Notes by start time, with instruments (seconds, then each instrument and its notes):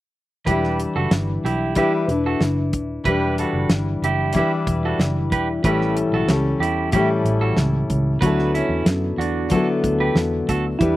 0.45 fingered electric bass E1, steel-string acoustic guitar E3 G3 D4, clean electric guitar G4 B4, kick, closed hi-hat
0.50 steel-string acoustic guitar E4 B4
0.64 snare
0.80 closed hi-hat
0.96 fingered electric bass F#1, clean electric guitar F#4 A4
1.11 fingered electric bass G1, snare, closed hi-hat
1.44 fingered electric bass B1, clean electric guitar E4 G4, closed hi-hat
1.75 steel-string acoustic guitar E3 G3 D4 E4 B4, clean electric guitar E4 G4, kick, closed hi-hat
2.08 fingered electric bass E1, steel-string acoustic guitar D4 E4 B4, closed hi-hat
2.26 clean electric guitar F#4 A4
2.40 fingered electric bass F#1, snare, closed hi-hat
2.73 fingered electric bass D#1, kick, closed hi-hat
3.04 fingered electric bass E1, steel-string acoustic guitar E3 G3 D4 E4, clean electric guitar G4 B4, kick, closed hi-hat
3.09 steel-string acoustic guitar B4
3.38 clean electric guitar F#4 A4, closed hi-hat
3.53 fingered electric bass F#1
3.70 fingered electric bass G1, snare, closed hi-hat
4.02 fingered electric bass F#1, clean electric guitar E4 G4, closed hi-hat
4.33 steel-string acoustic guitar E3 G3 D4, clean electric guitar G4, kick, closed hi-hat
4.37 steel-string acoustic guitar E4 B4, clean electric guitar E4
4.67 fingered electric bass E1, kick, closed hi-hat
4.85 clean electric guitar F#4 A4
4.98 fingered electric bass F#1, snare, closed hi-hat
5.32 fingered electric bass E1, clean electric guitar G4 B4, kick, closed hi-hat
5.63 fingered electric bass A1, steel-string acoustic guitar A2 E3 G3 C#4 E4 A4, clean electric guitar G4 B4, kick, closed hi-hat
5.81 snare
5.97 closed hi-hat
6.12 fingered electric bass B1, clean electric guitar F#4 A4
6.27 fingered electric bass C#2, steel-string acoustic guitar G3 C#4 E4, snare, closed hi-hat
6.31 steel-string acoustic guitar A4
6.59 fingered electric bass E2, clean electric guitar E4 G4, closed hi-hat
6.91 steel-string acoustic guitar A2 E3 G3 C#4, clean electric guitar E4 G4, kick, closed hi-hat
6.96 steel-string acoustic guitar E4 A4
7.24 fingered electric bass A1, closed hi-hat
7.41 clean electric guitar F#4 A4
7.56 fingered electric bass C#2, snare, closed hi-hat
7.90 fingered electric bass C#2, kick, closed hi-hat
8.20 fingered electric bass D2, steel-string acoustic guitar D3 F#3 B3 E4, clean electric guitar F#4 B4, kick, closed hi-hat
8.25 steel-string acoustic guitar A4
8.39 snare
8.54 clean electric guitar C#4 E4, closed hi-hat
8.69 fingered electric bass E2
8.86 fingered electric bass F#2, snare, closed hi-hat
9.18 fingered electric bass E2, clean electric guitar D4 F#4, closed hi-hat
9.49 steel-string acoustic guitar D3 F#3 B3, clean electric guitar F#4 A4, kick, closed hi-hat
9.53 steel-string acoustic guitar E4 A4
9.84 fingered electric bass D2, kick, closed hi-hat
10.00 clean electric guitar G4 B4
10.15 fingered electric bass E2, snare, closed hi-hat
10.48 fingered electric bass D2, clean electric guitar F#4 A4, kick, closed hi-hat
10.79 fingered electric bass E2, steel-string acoustic guitar E3 G3 D4 E4 B4, synth keys E4, kick, closed hi-hat